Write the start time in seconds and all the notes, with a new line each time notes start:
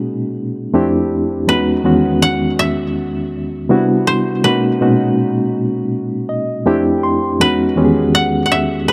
Already playing: A#2 B2 G#3 A#3 C#4 D#4 F#4 G#4 B4
0.74 F2 A3 C4 D4 E4 G4
1.47 E2 G#3 B3 C#4 D#4 F#4 B4
1.84 E2 D#3 G#3 B3 C#4 F#4
2.22 F#5
2.59 E5
3.69 C3 G3 B3 D4 E4 F#4
4.07 C5
4.44 B2 G#3 A#3 C#4 D#4 F#4 B4
4.81 A#2 B2 G#3 C#4 D#4 F#4
6.29 D#5
6.66 F2 A3 C4 D4 E4 G4 G5
7.03 C6
7.40 E2 G#3 B3 C#4 D#4 F#4 B4
7.77 E2 D#3 G#3 B3 C#4 G4
7.85 G#4
8.15 F#5
8.46 F#5
8.52 E5
8.88 B4